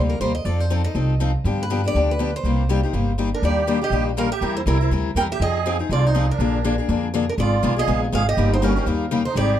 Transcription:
Already playing: D2 C3 G3 A#3 D#4 G4
0.10 A#4
0.20 D#2 C3 G3 A#3 D#4 G4 C5
0.35 D#5
0.45 F2 F3 C4 D#4 A4 D5
0.60 C5
0.70 F3 C4 D#4 A4
0.84 C4 D#4 A4 D#5
0.95 C2 F3 C4 D#4 A4
1.20 F3 C4 D#4 A4
1.44 G2 D3 F3 B3 D4 G4
1.63 B4
1.70 D3 F3 B3 D4 G4
1.84 B3 D4 G4 D5
1.95 D2 D3 F3 B3 D4 G4
2.11 B4
2.19 D3 F3 B3 D4 G4
2.36 C5
2.44 C2 C3 G3 A#3 D#4 G4
2.69 C3 G3 A#3 D#4 G4
2.83 A#3 D#4 G4
2.93 G1 C3 G3 A#3 D#4 G4
3.18 C3 G3 A#3 D#4 G4
3.34 D4 A#4
3.42 D#2 D#3 G3 A#3 D4 G4 D5
3.67 D#3 G3 A#3 D4 G4
3.81 A#3 D4 G4 D#5
3.90 A#1 D#3 G3 A#3 D4 G4
4.17 D#3 G3 A#3 D4 G4 A#4 F5
4.31 G4 E5
4.41 E2 E3 G3 C4 E4 A#4
4.57 E4 C5
4.66 C2 E3 G3 C4 E4 A#4
4.81 C4 E4 A#4
4.90 D2 E3 G3 C4 E4 A#4
5.15 E2 E3 G3 C4 E4 A#4 G5
5.32 G4 E5
5.40 F2 F3 C4 D#4 G#4 D#5
5.66 F3 C4 D#4 G#4
5.79 C4 D#4 G#4
5.89 C2 F3 C4 D#4 F4 G#4 D5
6.06 D#4 C5
6.15 F3 C4 D#4 G#4
6.30 D4 A#4
6.39 A#1 D3 F3 A#3 D4 G#4
6.64 D3 F3 A#3 D4 G#4
6.78 A#3 D4 G#4
6.89 F2 D3 F3 A#3 D4 G#4
7.14 D3 F3 A#3 D4 G#4
7.29 D4 A#4
7.38 G#1 D#3 G#3 B3 F4 G#4 D5
7.63 B1 D#3 G#3 B3 F4 G#4
7.76 B3 F4 G#4 D#5
7.88 A#1 D#3 G#3 B3 F4 G#4
8.12 G#1 D#3 G#3 B3 F4 G#4 F5
8.28 G4 D#5
8.37 G1 C#3 G3 A#3 D#4 G4
8.53 D#4 C5
8.62 C#3 G3 A#3 C#4 D#4 G4 A#4
8.76 A#3 D#4 G4
8.86 D#2 C#3 G3 A#3 D#4 G4
9.11 C#3 G3 A#3 D#4 G4
9.25 D#4 C5
9.35 G#1 D#3 G3 C4 D#4 G4 G#4 D5

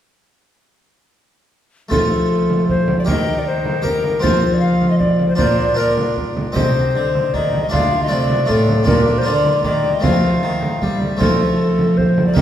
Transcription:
1.89 F3 A3 F4 A4, frame drum
2.50 frame drum
2.69 C5, frame drum
2.88 frame drum
2.99 D5
3.05 D#3 G4 A#4, frame drum
3.09 D#5
3.39 D5
3.47 C5
3.65 frame drum
3.82 G4 A#4, frame drum
4.04 frame drum
4.20 F3 C4 F4 A4 C5, frame drum
4.54 D5
4.60 F5
4.82 frame drum
4.91 D#5
4.99 D5, frame drum
5.19 frame drum
5.29 C5
5.35 A#2 D4 F4 A#4 C5, frame drum
5.74 D4 F4 A#4
5.97 frame drum
6.17 frame drum
6.37 frame drum
6.52 C3 C4 G4 C5 D#5, frame drum
6.96 D3
7.15 frame drum
7.34 D#3 D5, frame drum
7.54 frame drum
7.63 D#5
7.69 D3 A3 D4 F4 F5
7.73 frame drum
8.03 D#5
8.07 C3 A3 D4 F4
8.11 D5
8.30 frame drum
8.46 A2 A3 D4 F4 A4, frame drum
8.69 frame drum
8.83 A#2 A#3 D4 F4 A#4, frame drum
8.88 A#2
9.18 A#3 C5
9.23 D3 D4 F4 D5
9.45 frame drum
9.64 D#3 D5, frame drum
9.84 frame drum
9.94 D#5
10.00 A3 C4 F4 F5, frame drum
10.04 F3
10.43 D#3
10.63 frame drum
10.82 G3, frame drum
11.02 frame drum
11.17 F3 A3 C4 F4
11.21 F3 A4, frame drum
11.79 frame drum
11.97 C5, frame drum
12.18 frame drum
12.27 D5
12.34 D#3 A#3 D#4 G4 D#5, frame drum

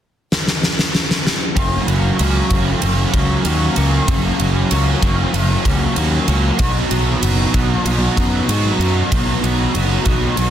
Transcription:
0.32 snare
0.47 snare
0.63 snare
0.79 snare
0.95 snare
1.11 snare
1.27 snare
1.55 F#1 F#2 C#3 F#3 A#3 C#4 F#4, kick, ride
1.87 F#1 F#3 A#3 C#4 F#4, ride
2.18 C#2 F#3 A#3 C#4 F#4, ride
2.50 F#1 F#3 A#3 C#4 F#4, kick, ride
2.81 F#1 F#2 C#3 F#3 A#3 C#4 F#4, ride
3.13 C#2 F#3 A#3 C#4 F#4, kick, ride
3.45 D#2 F#3 A#3 C#4 F#4, ride
3.76 C#2 F#3 A#3 C#4 F#4, ride
4.07 F#1 F#2 C#3 F#3 A#3 C#4 F#4, kick, ride
4.39 F#1 F#3 A#3 C#4 F#4, ride
4.70 C#2 F#3 A#3 C#4 F#4, ride
5.02 F#1 F#3 A#3 C#4 F#4, kick, ride
5.32 F#1 F#2 C#3 F#3 A#3 C#4 F#4, ride
5.64 C#2 F#3 A#3 C#4 F#4, kick, ride
5.95 D#2 F#3 A#3 C#4 F#4, ride
6.27 C#2 F#3 A#3 C#4 F#4, ride
6.58 B1 B2 F#3 B3 D#4 F#4, kick, ride
6.90 B1 B3 D#4 F#4, ride
7.21 F#1 F#3 B3 D#4 F#4, ride
7.53 B1 B3 D#4 F#4, kick, ride
7.85 B1 B2 F#3 B3 D#4 F#4, ride
8.17 F#2 B3 D#4 F#4, kick, ride
8.48 G#2 F#3 B3 D#4 F#4, ride
8.79 F#2 D#4 F#4, ride
8.83 B3
9.11 B1 B2 F#3 B3 D#4 F#4, kick, ride
9.43 B1 B3 D#4 F#4, ride
9.73 F#1 F#3 B3 D#4 F#4, ride
10.05 B1 B3 D#4 F#4, kick, ride
10.36 B1 B2 F#3 B3 D#4 F#4, ride

